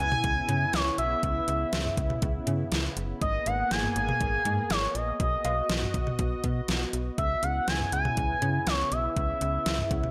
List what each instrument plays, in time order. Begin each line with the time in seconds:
Already playing: analog synth pad C#3 B3 E4
0.00 fm bass C#2, analog synth lead G#5
0.12 mid tom
0.24 fm bass C#2, kick, closed hi-hat
0.49 fm bass C#3, closed hi-hat, mid tom
0.73 fm bass C#2, analog synth lead C#5, snare, closed hi-hat
0.98 fm bass B1, analog synth lead E5, closed hi-hat
1.23 fm bass C#2, analog synth lead E5, kick, closed hi-hat
1.48 fm bass C#2, closed hi-hat
1.73 fm bass C#2, snare, closed hi-hat
1.85 mid tom
1.97 fm bass C#2, kick, closed hi-hat
2.10 mid tom
2.22 fm bass C#2, kick, closed hi-hat
2.47 fm bass C#3, closed hi-hat, mid tom
2.72 fm bass C#2, snare, closed hi-hat
2.97 fm bass F#1, closed hi-hat
3.22 fm bass G#1, analog synth pad A#3 B3 G#4, analog synth lead D#5, kick, closed hi-hat
3.46 fm bass G#1, analog synth lead F#5, closed hi-hat
3.71 fm bass G#1, analog synth lead G#5, snare, closed hi-hat
3.84 mid tom
3.96 fm bass G#1, analog synth lead G#5, closed hi-hat
4.09 mid tom
4.21 fm bass G#1, kick, closed hi-hat
4.45 fm bass G#2, closed hi-hat, mid tom
4.70 fm bass G#1, analog synth lead C#5, snare, closed hi-hat
4.95 fm bass A#1, analog synth lead D#5, closed hi-hat
5.20 fm bass B1, analog synth pad F#4 D#5, analog synth lead D#5, kick, closed hi-hat
5.45 fm bass B1, closed hi-hat, cowbell
5.69 fm bass B1, snare, closed hi-hat
5.82 mid tom
5.94 fm bass B1, kick, closed hi-hat
6.07 mid tom
6.19 fm bass B1, kick, closed hi-hat
6.44 fm bass B2, kick, closed hi-hat
6.68 fm bass B1, snare, closed hi-hat
6.93 fm bass B1, closed hi-hat
7.18 fm bass C#2, analog synth pad C#3 E4, analog synth lead E5, kick, closed hi-hat
7.43 fm bass C#2, analog synth lead F#5, closed hi-hat
7.68 fm bass C#2, analog synth lead G#5, snare, closed hi-hat
7.80 mid tom
7.92 fm bass C#2, analog synth lead G#5, closed hi-hat
8.05 mid tom
8.17 fm bass C#2, kick, closed hi-hat
8.42 fm bass C#3, closed hi-hat, mid tom
8.67 fm bass C#2, analog synth lead C#5, snare, closed hi-hat
8.92 fm bass B1, analog synth lead E5, closed hi-hat
9.17 fm bass C#2, analog synth lead E5, kick, closed hi-hat
9.41 fm bass C#2, closed hi-hat
9.66 fm bass C#2, snare, closed hi-hat
9.79 mid tom
9.91 fm bass C#2, kick, closed hi-hat
10.03 mid tom